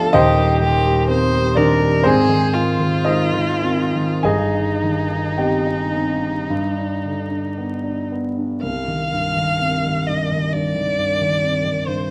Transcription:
Already playing: D2 D3 F3 B3 F4 G4 A4 D5 F5 G5
0.13 D#1 D#2 D#4 G4 C5 D#5
0.38 G3
0.61 D#3 G4
0.85 G3
1.09 C4 C5
1.34 G3
1.55 D#3 D4 A#4 D5
1.81 G3
2.03 G#2 C4 G#4 C5
2.29 D#3
2.54 G#3 F4
2.80 D#3
3.05 G#3 D#4 C5 D#5
3.33 D#3
3.63 C4
3.95 D#3
4.23 G1 G2 D#4 G#4 D#5 G#5
4.55 D#4
4.83 D#3
5.11 D#4
5.38 C4 G4 D#5 G5
5.67 D#4
5.94 C4
6.22 D#4
6.50 G2
6.77 D4
7.05 D3
7.31 D4
7.58 B3
7.83 D4
8.12 B3
8.38 D4
8.62 C2 F5
8.88 D#3
9.12 G2
9.36 D#3
9.61 C4
9.84 D#3
10.07 G2 D#5
10.31 D#3
10.52 G2 D5
10.76 D#3
10.98 G2
11.21 D#3
11.44 C4
11.65 D#3
11.87 G2 C5

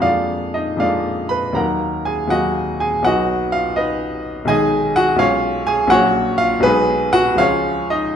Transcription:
0.00 F2 G#3 A#3 D4 F4 D5 F5
0.54 D#4 D#5
0.77 F2 G#3 A#3 D4 F4 F5
0.81 D5
1.29 B4 B5
1.53 D#2 F#3 A#3 D#4 A#4 F#5 A#5
2.05 G#4 G#5
2.27 D#2 F#3 A#3 D#4 F#4 D#5 F#5
2.80 G#4 G#5
3.02 B1 F#3 B3 D#4 F#5
3.06 F#4 D#5
3.52 F4 F5
3.76 D#4 B4 D#5
4.45 B1 D#3 G#3 D#4 G#4 D#5 G#5
4.96 F#4 F#5
5.16 B1 G#3 C#4 F4 C#5 F5
5.67 G#4 G#5
5.87 A#1 F#3 A#3 C#4 C#5 F#5
5.92 F#4
6.38 F4 F5
6.60 B1 F#3 G#3 B3 D#4 G#4 B4
7.13 F#4 F#5
7.35 C#2 F3 G#3 C#4 F5
7.40 F4 C#5
7.90 D#4 D#5

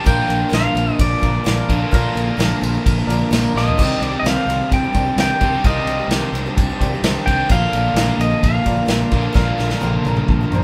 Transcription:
0.04 A#1 A#2 D3 F3 A#3 D4 F4 A#4 D5 G5, kick, ride
0.08 F4
0.28 A#1 F3 A#3 D4 F4, ride
0.39 A#3 D4 F4
0.49 A#1 A#2 F3 A#3 D4 F4, ride
0.53 F5, snare
0.75 A#1 F3 A#3 D4 F4, ride
0.87 A#3 D4 F4
0.99 A#1 D5, kick, ride
1.09 A#3 D4 F4
1.20 A#1 F3 A#3 D4 F4 A#4 D5, kick, ride
1.24 F4
1.32 A#3 D4 F4
1.44 A#1 A#2 F3 A#3 D4 F4, snare, ride
1.69 A#1 A#2 D3 A#3 D4 F4, kick, ride
1.78 A#3 D4 F4
1.91 A#1 A#2 D3 F3 A#3 D4 F4 A#4 F5, kick, ride
2.15 A#1 F3 A#3 D4 F4, ride
2.27 A#3 D4 F4
2.37 A#1 A#2 F3 A#3 D4 F4, snare, ride
2.61 A#1 F3 A#3 D4 F4, ride
2.74 A#3 D4 F4
2.86 A#1, kick, ride
2.98 A#3 D4 F4
3.07 A#1 F3 A#3 D4 F4 A#4 D5, ride
3.11 D4 F4
3.19 A#3 D4 F4
3.30 A#1 A#2 F3 A#3 D4 F4, snare, ride
3.54 A#1 D3 A#3 D4 F4 D#5, snare
3.59 A#2
3.66 A#3 D4 F4, floor tom
3.77 C2 C3 D#3 C4 D4 D#4 G4 C5 D6, kick, crash
3.81 D#3 G3 C4 G4
4.00 C2 D#3 C4 D4 G4 D5, ride
4.11 C4 D4 G4
4.20 C2 D#5
4.25 C3 D#3 C4 D4 G4, snare, ride
4.30 F5
4.46 C2 D#3 C4 D4 G4, ride
4.60 C4 D4 G4
4.71 C2 G5, kick, ride
4.84 C4 D4 G4
4.93 C2 D#3 C4 D4 G4 C5 D5, kick, ride
5.05 C4 D4 G4
5.16 C2 C3 D#3, snare, ride
5.20 C4 D4 G4 G5
5.40 C2 C3 D#3 G3 C4 G4, kick, ride
5.53 C4 D4 G4
5.64 C2 C3 D#3 G3 C4 D4 D#4 G4 C5 D#5 F5, kick, ride
5.85 C2 D#3 C4, ride
5.90 D4 G4
6.00 C4 D4 G4
6.08 C2 C3, snare, ride
6.12 D#3 C4 D4 G4
6.32 C2 D#3 C4, ride
6.36 D4 G4
6.46 C4 D4 G4
6.56 C2, kick, ride
6.70 C4 D4 G4
6.79 C2 D#3 C4 G4 C5 D5, kick, ride
6.83 D4 G4
6.94 C4 D4 G4
7.02 C2 C3 D#3 C4, snare, ride
7.06 D4 G4
7.26 C2 C3 D#3 G3 C4 G4 G5, kick, ride
7.49 A#1 A#2 D3 F3 A#3 D4 F4 A#4 D5 F5, kick, ride
7.53 A#3 D4 F4
7.73 A#1 F3 A#3, ride
7.77 D4 F4
7.85 A#3 D4 F4
7.94 A#1 A#2 F3 A#3 D4, snare, ride
7.99 F4
8.18 A#1 F3 A#3 D4 D#5, ride
8.23 F4
8.30 A#3 D4 F4
8.42 A#1 F5, kick, ride
8.52 A#3 D4 F4
8.64 A#1 F3 A#3 D4 F4 A#4 D5, kick, ride
8.76 A#3 D4 F4
8.86 A#1 A#2 F3 A#3 D4 F4, snare, ride
9.11 A#1 A#2 D3 A#3 D4 F4, kick, ride
9.22 A#3 D4 F4
9.33 A#1 A#2 D3 F3 A#3 D4 F4 A#4 F5, kick, snare
9.37 A#3 D4 F4
9.58 A#1 F3 A#3 D4 F4, snare
9.69 A#3 D4 F4, snare
9.81 A#1 A#2 F3 A#3 D4 F4, high tom
10.04 A#1 F3 A#3 D4 F4 A#5, high tom
10.16 A#3 D4 F4, mid tom
10.28 A#1 A5, kick, mid tom
10.41 A#3 D4 F4
10.50 A#1 F3 A#3 D4 F4 A#4 C5, mid tom
10.55 D4 F4

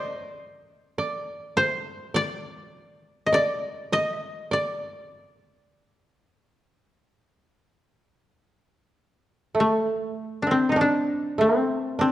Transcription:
Already playing: C5 D5
0.14 C#5
0.33 D5
0.98 D5
1.57 C5
2.14 D5
3.26 D#5
3.33 D5
3.92 D#5
4.51 D5
9.55 A3
9.60 A3
10.43 D4
10.47 C4
10.51 C4
10.69 D#4
10.76 D4
10.81 D4
11.38 C4
11.99 C4 D4

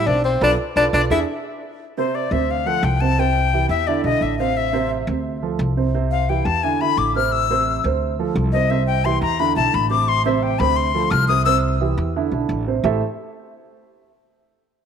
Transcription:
0.07 B1 C4 D4 C5 D5 E5
0.24 C4 C5
0.41 B1 D4 F4 A4 B4 D5
0.76 B1 D4 F4 A4 B4 D5
0.93 B1 D4 F4 A4 B4 D5
1.10 E2 D4 E4 G#4 E5
1.98 C3 C4 C5
2.15 D5
2.31 D2 C3 C4 C5 E5
2.51 F5
2.66 F3 F4 A4 F#5
2.83 C2 G5
3.01 C3 C4 C5 A5
3.19 C3 C4 C5 G5
3.53 E3 E4 G4
3.69 E2 E5
3.87 D3 D4 E4 D5
4.04 B1 D3 D4 E4 D#5
4.21 A1 E5
4.39 C3 C4 C5 F5
4.57 E5
4.73 C3 C4 C5
5.07 D2 C3 C4 C5
5.42 F3 F4 A4
5.59 C2
5.77 C3 C4 C5
5.94 C3 C4 C5
6.11 F5
6.29 E3 E4 G4 G5
6.45 E2 A5
6.63 D3 D4 E4 G#5
6.81 D3 D4 E4 B5
6.97 A1 D6
7.15 C3 C4 C5 F6
7.32 E6
7.50 C3 C4 C5
7.84 D2 C3 C4 C5
8.19 F3 F4 A4
8.35 C2
8.52 C3 C4 C5 D#5
8.70 C3 C4 C5 E5
8.87 G5
9.05 E3 E4 G4 C6
9.22 E2 A#5
9.39 D3 D4 E4 B5
9.56 B1 D3 D4 E4 A5
9.74 A1 B5
9.90 C3 C4 C5 D6
10.08 C6
10.25 C3 C4 C5 E5
10.43 G5
10.59 D2 C3 C4 C5 B5
10.76 C6
10.94 F3 F4 A4
11.11 C2 F6
11.28 C3 C4 C5 D#6
11.45 C3 C4 C5 E6
11.81 E3 E4 G4
11.98 E2
12.16 D3 D4 E4
12.31 B1 D3 D4 E4
12.49 A1
12.67 C3 C4 C5
12.84 A1 A3 E4 G4 A4 C5 E5

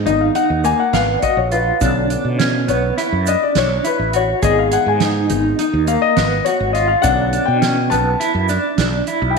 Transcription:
0.06 G#1 D#3 G#3 B3 D#4 D#5, closed hi-hat
0.21 F5
0.35 D#4 F#5, closed hi-hat
0.50 D#2
0.64 A#3 G#5, closed hi-hat, shaker
0.80 F#5
0.93 G#1 B3 F5, snare, closed hi-hat, shaker
1.19 F#4 D5, kick, closed hi-hat
1.23 D#5
1.37 A#1 C#5
1.51 F4 B4, closed hi-hat
1.81 B1 D3 B3 C#4 D4, kick, closed hi-hat, shaker
2.10 D4, closed hi-hat
2.25 B2
2.39 C#4, snare, closed hi-hat
2.68 B1 B3 C#5, closed hi-hat, shaker
2.98 E4, snare, closed hi-hat
3.12 F#2
3.26 D4 D#5, closed hi-hat, shaker
3.43 D5
3.55 B1 D4 C#5, snare, closed hi-hat
3.84 E4 B4, closed hi-hat
3.99 A1
4.13 F#4 C#5, closed hi-hat
4.42 G#1 D#3 G#3 B3 G#4 D#5, kick, closed hi-hat, shaker
4.59 F5
4.71 G#4 F#5, closed hi-hat
4.86 G#2 G#5
5.00 D#4, snare, closed hi-hat
5.30 G#1 D#3 G#3 B3 D#4, closed hi-hat
5.59 D#4, closed hi-hat
5.73 D#2
5.87 A#3 F5, closed hi-hat, shaker
6.02 D#5
6.17 G#1 B3, snare, closed hi-hat
6.45 F#4 C#5, closed hi-hat
6.60 G#1
6.73 F4 D#5, snare, closed hi-hat
6.88 F5
7.02 B1 D3 B3 C#4 D4 F#5, kick, closed hi-hat, shaker
7.33 D4, closed hi-hat
7.46 B2 G5
7.62 C#4, snare, closed hi-hat
7.90 B1 B3 A5, closed hi-hat, shaker
8.20 E4, snare, closed hi-hat
8.35 F#2
8.49 D4, snare, closed hi-hat, shaker
8.78 B1 D4, snare, closed hi-hat
9.07 E4, closed hi-hat, shaker
9.22 B1
9.30 G5

